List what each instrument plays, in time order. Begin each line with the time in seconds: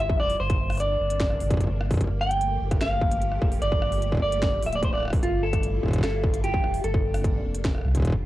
Already playing: sub bass G1, string machine G3 C4 E4 F4
0.00 clean electric guitar E5
0.09 kick
0.20 sub bass F1, clean electric guitar D5, cross-stick
0.30 open hi-hat
0.40 sub bass G1, string machine C3 A#3 D4, clean electric guitar C5
0.50 kick, closed hi-hat
0.70 cross-stick, open hi-hat
0.72 open hi-hat
0.75 open hi-hat
0.77 clean electric guitar D5, closed hi-hat, open hi-hat
1.00 sub bass G1
1.10 closed hi-hat
1.20 kick, snare, closed hi-hat
1.30 cross-stick
1.40 sub bass G1, open hi-hat
1.50 kick, closed hi-hat
1.54 kick
1.57 kick
1.60 kick, closed hi-hat
1.64 kick
1.67 kick
1.81 cross-stick
1.91 kick, open hi-hat
1.94 kick
1.97 sub bass G1, string machine F3 A3 G4, kick
2.01 kick, closed hi-hat
2.04 kick
2.07 kick
2.21 clean electric guitar G5, cross-stick
2.31 closed hi-hat
2.41 closed hi-hat
2.61 sub bass G1
2.71 kick, cross-stick, closed hi-hat
2.81 clean electric guitar F5, snare, closed hi-hat
3.01 kick
3.12 closed hi-hat
3.22 closed hi-hat
3.32 cross-stick
3.42 sub bass F1, kick
3.52 open hi-hat
3.62 sub bass G1, clean electric guitar D5, closed hi-hat
3.72 kick
3.82 cross-stick
3.92 open hi-hat
4.02 closed hi-hat
4.12 kick
4.15 kick
4.17 kick
4.20 sub bass G1, clean electric guitar D5, kick
4.32 closed hi-hat
4.42 kick, cross-stick, snare, closed hi-hat
4.62 sub bass D1, clean electric guitar E5, open hi-hat
4.73 clean electric guitar D5, closed hi-hat
4.83 clean electric guitar C5, kick, closed hi-hat
4.93 clean electric guitar D5, cross-stick
4.95 cross-stick
4.98 cross-stick
5.00 cross-stick
5.03 cross-stick
5.05 cross-stick
5.08 cross-stick
5.10 kick, cross-stick, open hi-hat
5.23 sub bass G1, string machine G3 E4 F4, clean electric guitar F4, closed hi-hat
5.43 clean electric guitar A4
5.53 kick, cross-stick, closed hi-hat
5.63 closed hi-hat
5.83 sub bass G1, kick
5.86 kick
5.88 kick
5.91 kick
5.93 kick, closed hi-hat
5.96 kick
5.98 kick
6.01 clean electric guitar A4, kick, cross-stick, snare, closed hi-hat
6.24 kick
6.34 closed hi-hat
6.44 clean electric guitar G4, closed hi-hat
6.54 kick
6.64 sub bass F1, cross-stick
6.74 open hi-hat
6.84 sub bass G1, clean electric guitar A4, closed hi-hat
6.94 kick
7.14 cross-stick, open hi-hat
7.24 kick, closed hi-hat
7.44 sub bass F1
7.54 closed hi-hat
7.65 kick, snare, closed hi-hat
7.75 cross-stick
7.78 cross-stick
7.81 cross-stick
7.85 sub bass C2, cross-stick
7.88 cross-stick
7.91 kick, cross-stick, closed hi-hat
7.97 kick
8.00 kick
8.02 sub bass F1, kick
8.05 kick, closed hi-hat
8.07 kick
8.10 kick
8.12 kick